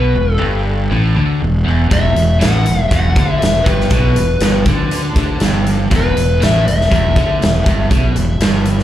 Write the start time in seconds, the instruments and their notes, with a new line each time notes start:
Already playing: fingered electric bass B1, overdriven electric guitar B2, electric slide guitar B4
0.14 fingered electric bass E1, overdriven electric guitar E2
0.33 electric slide guitar A4
0.40 fingered electric bass G1, overdriven electric guitar G2
0.90 fingered electric bass A1, overdriven electric guitar A2
1.16 fingered electric bass D2, overdriven electric guitar D3
1.41 fingered electric bass E1, overdriven electric guitar E2
1.65 fingered electric bass E1, overdriven electric guitar E2
1.90 fingered electric bass E1, overdriven electric guitar E2, electric slide guitar E5, kick, closed hi-hat
2.16 fingered electric bass E1, overdriven electric guitar E2, closed hi-hat
2.41 fingered electric bass A1, overdriven electric guitar A2, electric slide guitar F#5, snare, closed hi-hat
2.66 fingered electric bass E1, overdriven electric guitar E2, closed hi-hat
2.89 fingered electric bass E1, electric slide guitar F#5, kick, closed hi-hat
2.93 overdriven electric guitar E2
3.16 fingered electric bass D2, overdriven electric guitar D3, kick, closed hi-hat
3.38 fingered electric bass E1, overdriven electric guitar E2, electric slide guitar E5, closed hi-hat
3.43 snare
3.64 fingered electric bass G1, overdriven electric guitar G2, electric slide guitar B4, kick, closed hi-hat
3.81 snare
3.90 fingered electric bass B1, overdriven electric guitar B2, kick, closed hi-hat
4.16 fingered electric bass E1, overdriven electric guitar E2, closed hi-hat
4.40 fingered electric bass G1, overdriven electric guitar G2, snare, closed hi-hat
4.65 fingered electric bass D2, overdriven electric guitar D3, kick, closed hi-hat
4.91 closed hi-hat
5.16 fingered electric bass D2, overdriven electric guitar D3, kick, closed hi-hat
5.40 fingered electric bass G1, overdriven electric guitar G2, snare, closed hi-hat
5.66 closed hi-hat
5.91 fingered electric bass E1, overdriven electric guitar E2, kick, closed hi-hat
5.96 electric slide guitar B4
6.16 fingered electric bass E1, overdriven electric guitar E2, closed hi-hat
6.42 fingered electric bass A1, overdriven electric guitar A2, electric slide guitar E5, snare, closed hi-hat
6.66 fingered electric bass E1, overdriven electric guitar E2, electric slide guitar E5, closed hi-hat
6.81 snare
6.92 fingered electric bass E1, overdriven electric guitar E2, kick, closed hi-hat
7.16 fingered electric bass D2, overdriven electric guitar D3, kick, closed hi-hat
7.41 fingered electric bass E1, overdriven electric guitar E2, snare, closed hi-hat
7.66 fingered electric bass G1, overdriven electric guitar G2, kick, closed hi-hat
7.91 fingered electric bass B1, overdriven electric guitar B2, kick, closed hi-hat
8.16 fingered electric bass E1, overdriven electric guitar E2, closed hi-hat
8.40 fingered electric bass G1, overdriven electric guitar G2, snare, closed hi-hat
8.65 closed hi-hat
8.79 snare